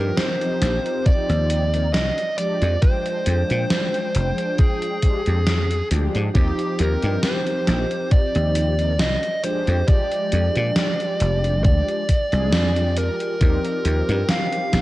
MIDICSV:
0, 0, Header, 1, 6, 480
1, 0, Start_track
1, 0, Tempo, 882353
1, 1535, Time_signature, 4, 2, 24, 8
1, 8059, End_track
2, 0, Start_track
2, 0, Title_t, "Lead electric guitar"
2, 0, Program_c, 0, 29
2, 0, Note_on_c, 0, 70, 84
2, 95, Note_off_c, 0, 70, 0
2, 97, Note_on_c, 0, 72, 92
2, 577, Note_on_c, 0, 74, 102
2, 590, Note_off_c, 0, 72, 0
2, 1050, Note_off_c, 0, 74, 0
2, 1052, Note_on_c, 0, 75, 101
2, 1292, Note_off_c, 0, 75, 0
2, 1294, Note_on_c, 0, 74, 99
2, 1532, Note_on_c, 0, 72, 101
2, 1542, Note_off_c, 0, 74, 0
2, 2497, Note_on_c, 0, 68, 81
2, 2522, Note_off_c, 0, 72, 0
2, 3194, Note_off_c, 0, 68, 0
2, 3454, Note_on_c, 0, 67, 84
2, 3699, Note_on_c, 0, 70, 83
2, 3702, Note_off_c, 0, 67, 0
2, 3920, Note_off_c, 0, 70, 0
2, 3939, Note_on_c, 0, 72, 87
2, 4416, Note_off_c, 0, 72, 0
2, 4418, Note_on_c, 0, 74, 96
2, 4894, Note_off_c, 0, 74, 0
2, 4897, Note_on_c, 0, 75, 92
2, 5135, Note_off_c, 0, 75, 0
2, 5137, Note_on_c, 0, 72, 89
2, 5373, Note_off_c, 0, 72, 0
2, 5376, Note_on_c, 0, 74, 95
2, 6327, Note_off_c, 0, 74, 0
2, 6334, Note_on_c, 0, 74, 98
2, 7060, Note_on_c, 0, 70, 95
2, 7076, Note_off_c, 0, 74, 0
2, 7780, Note_on_c, 0, 77, 103
2, 7799, Note_off_c, 0, 70, 0
2, 8059, Note_off_c, 0, 77, 0
2, 8059, End_track
3, 0, Start_track
3, 0, Title_t, "Analog polysynth"
3, 0, Program_c, 1, 90
3, 0, Note_on_c, 1, 53, 98
3, 0, Note_on_c, 1, 60, 88
3, 0, Note_on_c, 1, 63, 85
3, 0, Note_on_c, 1, 67, 103
3, 910, Note_off_c, 1, 53, 0
3, 913, Note_off_c, 1, 60, 0
3, 915, Note_off_c, 1, 63, 0
3, 918, Note_off_c, 1, 67, 0
3, 942, Note_on_c, 1, 53, 74
3, 944, Note_on_c, 1, 60, 71
3, 946, Note_on_c, 1, 63, 72
3, 949, Note_on_c, 1, 70, 82
3, 1010, Note_off_c, 1, 53, 0
3, 1011, Note_off_c, 1, 60, 0
3, 1012, Note_off_c, 1, 63, 0
3, 1014, Note_off_c, 1, 70, 0
3, 1293, Note_on_c, 1, 53, 85
3, 1294, Note_on_c, 1, 56, 75
3, 1297, Note_on_c, 1, 62, 78
3, 1300, Note_on_c, 1, 67, 95
3, 1507, Note_off_c, 1, 53, 0
3, 1508, Note_off_c, 1, 56, 0
3, 1509, Note_off_c, 1, 62, 0
3, 1511, Note_off_c, 1, 67, 0
3, 1529, Note_on_c, 1, 53, 93
3, 1535, Note_on_c, 1, 56, 81
3, 1539, Note_on_c, 1, 62, 85
3, 1546, Note_on_c, 1, 79, 100
3, 2706, Note_off_c, 1, 53, 0
3, 2708, Note_off_c, 1, 56, 0
3, 2710, Note_off_c, 1, 62, 0
3, 2714, Note_off_c, 1, 79, 0
3, 2731, Note_on_c, 1, 53, 92
3, 2733, Note_on_c, 1, 56, 82
3, 2735, Note_on_c, 1, 62, 86
3, 2739, Note_on_c, 1, 67, 101
3, 2831, Note_off_c, 1, 53, 0
3, 2832, Note_off_c, 1, 56, 0
3, 2833, Note_off_c, 1, 62, 0
3, 2835, Note_off_c, 1, 67, 0
3, 2858, Note_on_c, 1, 53, 86
3, 2861, Note_on_c, 1, 56, 77
3, 2863, Note_on_c, 1, 62, 77
3, 2865, Note_on_c, 1, 67, 92
3, 2928, Note_off_c, 1, 53, 0
3, 2930, Note_off_c, 1, 56, 0
3, 2931, Note_off_c, 1, 62, 0
3, 2932, Note_off_c, 1, 67, 0
3, 3212, Note_on_c, 1, 53, 75
3, 3215, Note_on_c, 1, 56, 64
3, 3218, Note_on_c, 1, 62, 66
3, 3219, Note_on_c, 1, 67, 82
3, 3427, Note_off_c, 1, 53, 0
3, 3429, Note_off_c, 1, 56, 0
3, 3430, Note_off_c, 1, 62, 0
3, 3430, Note_off_c, 1, 67, 0
3, 3447, Note_on_c, 1, 53, 97
3, 3453, Note_on_c, 1, 60, 84
3, 3457, Note_on_c, 1, 63, 88
3, 3462, Note_on_c, 1, 67, 108
3, 4749, Note_off_c, 1, 53, 0
3, 4752, Note_off_c, 1, 60, 0
3, 4754, Note_off_c, 1, 63, 0
3, 4757, Note_off_c, 1, 67, 0
3, 4779, Note_on_c, 1, 53, 75
3, 4781, Note_on_c, 1, 60, 70
3, 4786, Note_on_c, 1, 63, 71
3, 4789, Note_on_c, 1, 70, 83
3, 4849, Note_off_c, 1, 53, 0
3, 4850, Note_off_c, 1, 60, 0
3, 4853, Note_off_c, 1, 63, 0
3, 4854, Note_off_c, 1, 70, 0
3, 5129, Note_on_c, 1, 53, 85
3, 5134, Note_on_c, 1, 56, 78
3, 5135, Note_on_c, 1, 62, 79
3, 5140, Note_on_c, 1, 67, 94
3, 5346, Note_off_c, 1, 53, 0
3, 5348, Note_off_c, 1, 56, 0
3, 5348, Note_off_c, 1, 62, 0
3, 5351, Note_off_c, 1, 67, 0
3, 5364, Note_on_c, 1, 53, 90
3, 5368, Note_on_c, 1, 56, 81
3, 5376, Note_on_c, 1, 62, 85
3, 5381, Note_on_c, 1, 67, 97
3, 6543, Note_off_c, 1, 53, 0
3, 6545, Note_off_c, 1, 56, 0
3, 6549, Note_off_c, 1, 62, 0
3, 6551, Note_off_c, 1, 67, 0
3, 6698, Note_on_c, 1, 53, 93
3, 6701, Note_on_c, 1, 56, 86
3, 6704, Note_on_c, 1, 62, 87
3, 6706, Note_on_c, 1, 68, 103
3, 6910, Note_off_c, 1, 53, 0
3, 6911, Note_off_c, 1, 56, 0
3, 6913, Note_off_c, 1, 62, 0
3, 6914, Note_off_c, 1, 68, 0
3, 6939, Note_on_c, 1, 53, 72
3, 6940, Note_on_c, 1, 56, 64
3, 6944, Note_on_c, 1, 62, 64
3, 6946, Note_on_c, 1, 67, 81
3, 7266, Note_off_c, 1, 53, 0
3, 7267, Note_off_c, 1, 56, 0
3, 7268, Note_off_c, 1, 62, 0
3, 7270, Note_off_c, 1, 67, 0
3, 7286, Note_on_c, 1, 53, 95
3, 7290, Note_on_c, 1, 60, 87
3, 7297, Note_on_c, 1, 63, 88
3, 7301, Note_on_c, 1, 67, 106
3, 8059, Note_off_c, 1, 53, 0
3, 8059, Note_off_c, 1, 60, 0
3, 8059, Note_off_c, 1, 63, 0
3, 8059, Note_off_c, 1, 67, 0
3, 8059, End_track
4, 0, Start_track
4, 0, Title_t, "Slap bass"
4, 0, Program_c, 2, 36
4, 0, Note_on_c, 2, 43, 96
4, 59, Note_off_c, 2, 43, 0
4, 336, Note_on_c, 2, 34, 76
4, 422, Note_off_c, 2, 34, 0
4, 704, Note_on_c, 2, 39, 88
4, 1057, Note_off_c, 2, 39, 0
4, 1057, Note_on_c, 2, 36, 77
4, 1143, Note_off_c, 2, 36, 0
4, 1426, Note_on_c, 2, 41, 90
4, 1500, Note_off_c, 2, 41, 0
4, 1778, Note_on_c, 2, 41, 82
4, 1863, Note_off_c, 2, 41, 0
4, 1909, Note_on_c, 2, 46, 100
4, 1981, Note_off_c, 2, 46, 0
4, 2260, Note_on_c, 2, 29, 76
4, 2344, Note_off_c, 2, 29, 0
4, 2869, Note_on_c, 2, 41, 75
4, 3159, Note_off_c, 2, 41, 0
4, 3217, Note_on_c, 2, 38, 83
4, 3303, Note_off_c, 2, 38, 0
4, 3347, Note_on_c, 2, 44, 77
4, 3420, Note_off_c, 2, 44, 0
4, 3456, Note_on_c, 2, 39, 95
4, 3542, Note_off_c, 2, 39, 0
4, 3700, Note_on_c, 2, 39, 85
4, 3784, Note_off_c, 2, 39, 0
4, 3827, Note_on_c, 2, 43, 97
4, 3901, Note_off_c, 2, 43, 0
4, 4179, Note_on_c, 2, 34, 77
4, 4264, Note_off_c, 2, 34, 0
4, 4546, Note_on_c, 2, 39, 88
4, 4899, Note_off_c, 2, 39, 0
4, 4899, Note_on_c, 2, 36, 78
4, 4984, Note_off_c, 2, 36, 0
4, 5265, Note_on_c, 2, 41, 86
4, 5339, Note_off_c, 2, 41, 0
4, 5619, Note_on_c, 2, 41, 83
4, 5704, Note_off_c, 2, 41, 0
4, 5747, Note_on_c, 2, 46, 100
4, 5821, Note_off_c, 2, 46, 0
4, 6099, Note_on_c, 2, 29, 74
4, 6336, Note_off_c, 2, 29, 0
4, 6336, Note_on_c, 2, 38, 81
4, 6422, Note_off_c, 2, 38, 0
4, 6705, Note_on_c, 2, 36, 95
4, 6818, Note_off_c, 2, 36, 0
4, 6818, Note_on_c, 2, 41, 80
4, 7118, Note_off_c, 2, 41, 0
4, 7298, Note_on_c, 2, 39, 95
4, 7383, Note_off_c, 2, 39, 0
4, 7536, Note_on_c, 2, 39, 82
4, 7622, Note_off_c, 2, 39, 0
4, 7664, Note_on_c, 2, 43, 100
4, 7739, Note_off_c, 2, 43, 0
4, 8014, Note_on_c, 2, 34, 76
4, 8059, Note_off_c, 2, 34, 0
4, 8059, End_track
5, 0, Start_track
5, 0, Title_t, "Muted slap bass strokes"
5, 578, Note_on_c, 9, 29, 41
5, 633, Note_off_c, 9, 29, 0
5, 4416, Note_on_c, 9, 29, 41
5, 4470, Note_off_c, 9, 29, 0
5, 8059, End_track
6, 0, Start_track
6, 0, Title_t, "Drums"
6, 95, Note_on_c, 9, 38, 115
6, 95, Note_on_c, 9, 42, 64
6, 149, Note_off_c, 9, 38, 0
6, 149, Note_off_c, 9, 42, 0
6, 225, Note_on_c, 9, 42, 38
6, 280, Note_off_c, 9, 42, 0
6, 335, Note_on_c, 9, 38, 56
6, 335, Note_on_c, 9, 42, 90
6, 390, Note_off_c, 9, 38, 0
6, 390, Note_off_c, 9, 42, 0
6, 467, Note_on_c, 9, 42, 38
6, 521, Note_off_c, 9, 42, 0
6, 575, Note_on_c, 9, 42, 67
6, 578, Note_on_c, 9, 36, 110
6, 630, Note_off_c, 9, 42, 0
6, 632, Note_off_c, 9, 36, 0
6, 705, Note_on_c, 9, 42, 38
6, 759, Note_off_c, 9, 42, 0
6, 816, Note_on_c, 9, 42, 93
6, 870, Note_off_c, 9, 42, 0
6, 945, Note_on_c, 9, 42, 39
6, 999, Note_off_c, 9, 42, 0
6, 1056, Note_on_c, 9, 38, 113
6, 1056, Note_on_c, 9, 42, 62
6, 1110, Note_off_c, 9, 38, 0
6, 1110, Note_off_c, 9, 42, 0
6, 1185, Note_on_c, 9, 42, 40
6, 1239, Note_off_c, 9, 42, 0
6, 1294, Note_on_c, 9, 42, 91
6, 1348, Note_off_c, 9, 42, 0
6, 1423, Note_on_c, 9, 42, 40
6, 1478, Note_off_c, 9, 42, 0
6, 1534, Note_on_c, 9, 42, 68
6, 1537, Note_on_c, 9, 36, 116
6, 1589, Note_off_c, 9, 42, 0
6, 1591, Note_off_c, 9, 36, 0
6, 1663, Note_on_c, 9, 42, 36
6, 1717, Note_off_c, 9, 42, 0
6, 1773, Note_on_c, 9, 42, 97
6, 1828, Note_off_c, 9, 42, 0
6, 1904, Note_on_c, 9, 42, 40
6, 1958, Note_off_c, 9, 42, 0
6, 2015, Note_on_c, 9, 38, 115
6, 2015, Note_on_c, 9, 42, 67
6, 2069, Note_off_c, 9, 38, 0
6, 2069, Note_off_c, 9, 42, 0
6, 2145, Note_on_c, 9, 42, 36
6, 2199, Note_off_c, 9, 42, 0
6, 2256, Note_on_c, 9, 42, 91
6, 2310, Note_off_c, 9, 42, 0
6, 2383, Note_on_c, 9, 42, 39
6, 2438, Note_off_c, 9, 42, 0
6, 2493, Note_on_c, 9, 42, 66
6, 2497, Note_on_c, 9, 36, 118
6, 2548, Note_off_c, 9, 42, 0
6, 2551, Note_off_c, 9, 36, 0
6, 2622, Note_on_c, 9, 42, 40
6, 2677, Note_off_c, 9, 42, 0
6, 2733, Note_on_c, 9, 42, 92
6, 2736, Note_on_c, 9, 36, 62
6, 2788, Note_off_c, 9, 42, 0
6, 2791, Note_off_c, 9, 36, 0
6, 2862, Note_on_c, 9, 42, 40
6, 2916, Note_off_c, 9, 42, 0
6, 2974, Note_on_c, 9, 38, 117
6, 2974, Note_on_c, 9, 42, 65
6, 3028, Note_off_c, 9, 38, 0
6, 3028, Note_off_c, 9, 42, 0
6, 3104, Note_on_c, 9, 42, 41
6, 3159, Note_off_c, 9, 42, 0
6, 3214, Note_on_c, 9, 42, 91
6, 3269, Note_off_c, 9, 42, 0
6, 3344, Note_on_c, 9, 42, 39
6, 3399, Note_off_c, 9, 42, 0
6, 3454, Note_on_c, 9, 42, 63
6, 3456, Note_on_c, 9, 36, 116
6, 3508, Note_off_c, 9, 42, 0
6, 3510, Note_off_c, 9, 36, 0
6, 3584, Note_on_c, 9, 42, 36
6, 3638, Note_off_c, 9, 42, 0
6, 3693, Note_on_c, 9, 42, 91
6, 3748, Note_off_c, 9, 42, 0
6, 3822, Note_on_c, 9, 42, 37
6, 3876, Note_off_c, 9, 42, 0
6, 3933, Note_on_c, 9, 38, 119
6, 3933, Note_on_c, 9, 42, 65
6, 3988, Note_off_c, 9, 38, 0
6, 3988, Note_off_c, 9, 42, 0
6, 4062, Note_on_c, 9, 42, 38
6, 4117, Note_off_c, 9, 42, 0
6, 4175, Note_on_c, 9, 38, 61
6, 4175, Note_on_c, 9, 42, 90
6, 4229, Note_off_c, 9, 38, 0
6, 4229, Note_off_c, 9, 42, 0
6, 4303, Note_on_c, 9, 42, 39
6, 4357, Note_off_c, 9, 42, 0
6, 4414, Note_on_c, 9, 42, 68
6, 4416, Note_on_c, 9, 36, 119
6, 4468, Note_off_c, 9, 42, 0
6, 4470, Note_off_c, 9, 36, 0
6, 4543, Note_on_c, 9, 42, 40
6, 4597, Note_off_c, 9, 42, 0
6, 4653, Note_on_c, 9, 42, 96
6, 4708, Note_off_c, 9, 42, 0
6, 4781, Note_on_c, 9, 42, 37
6, 4836, Note_off_c, 9, 42, 0
6, 4893, Note_on_c, 9, 38, 118
6, 4893, Note_on_c, 9, 42, 65
6, 4947, Note_off_c, 9, 38, 0
6, 4947, Note_off_c, 9, 42, 0
6, 5021, Note_on_c, 9, 42, 40
6, 5075, Note_off_c, 9, 42, 0
6, 5133, Note_on_c, 9, 42, 92
6, 5187, Note_off_c, 9, 42, 0
6, 5262, Note_on_c, 9, 42, 39
6, 5316, Note_off_c, 9, 42, 0
6, 5373, Note_on_c, 9, 42, 63
6, 5376, Note_on_c, 9, 36, 119
6, 5427, Note_off_c, 9, 42, 0
6, 5430, Note_off_c, 9, 36, 0
6, 5502, Note_on_c, 9, 42, 36
6, 5557, Note_off_c, 9, 42, 0
6, 5613, Note_on_c, 9, 42, 89
6, 5668, Note_off_c, 9, 42, 0
6, 5742, Note_on_c, 9, 42, 37
6, 5796, Note_off_c, 9, 42, 0
6, 5853, Note_on_c, 9, 38, 120
6, 5853, Note_on_c, 9, 42, 62
6, 5907, Note_off_c, 9, 38, 0
6, 5907, Note_off_c, 9, 42, 0
6, 5984, Note_on_c, 9, 42, 35
6, 6039, Note_off_c, 9, 42, 0
6, 6094, Note_on_c, 9, 42, 86
6, 6148, Note_off_c, 9, 42, 0
6, 6224, Note_on_c, 9, 42, 37
6, 6279, Note_off_c, 9, 42, 0
6, 6335, Note_on_c, 9, 42, 64
6, 6337, Note_on_c, 9, 36, 112
6, 6389, Note_off_c, 9, 42, 0
6, 6391, Note_off_c, 9, 36, 0
6, 6465, Note_on_c, 9, 42, 37
6, 6519, Note_off_c, 9, 42, 0
6, 6576, Note_on_c, 9, 42, 89
6, 6577, Note_on_c, 9, 36, 61
6, 6630, Note_off_c, 9, 42, 0
6, 6631, Note_off_c, 9, 36, 0
6, 6703, Note_on_c, 9, 42, 37
6, 6757, Note_off_c, 9, 42, 0
6, 6813, Note_on_c, 9, 38, 120
6, 6813, Note_on_c, 9, 42, 61
6, 6868, Note_off_c, 9, 38, 0
6, 6868, Note_off_c, 9, 42, 0
6, 6943, Note_on_c, 9, 42, 38
6, 6997, Note_off_c, 9, 42, 0
6, 7053, Note_on_c, 9, 42, 86
6, 7108, Note_off_c, 9, 42, 0
6, 7182, Note_on_c, 9, 42, 37
6, 7237, Note_off_c, 9, 42, 0
6, 7294, Note_on_c, 9, 42, 61
6, 7297, Note_on_c, 9, 36, 110
6, 7348, Note_off_c, 9, 42, 0
6, 7351, Note_off_c, 9, 36, 0
6, 7423, Note_on_c, 9, 42, 35
6, 7478, Note_off_c, 9, 42, 0
6, 7534, Note_on_c, 9, 42, 84
6, 7588, Note_off_c, 9, 42, 0
6, 7664, Note_on_c, 9, 42, 37
6, 7718, Note_off_c, 9, 42, 0
6, 7772, Note_on_c, 9, 38, 114
6, 7772, Note_on_c, 9, 42, 63
6, 7826, Note_off_c, 9, 38, 0
6, 7826, Note_off_c, 9, 42, 0
6, 7902, Note_on_c, 9, 42, 34
6, 7956, Note_off_c, 9, 42, 0
6, 8013, Note_on_c, 9, 38, 61
6, 8013, Note_on_c, 9, 42, 83
6, 8059, Note_off_c, 9, 38, 0
6, 8059, Note_off_c, 9, 42, 0
6, 8059, End_track
0, 0, End_of_file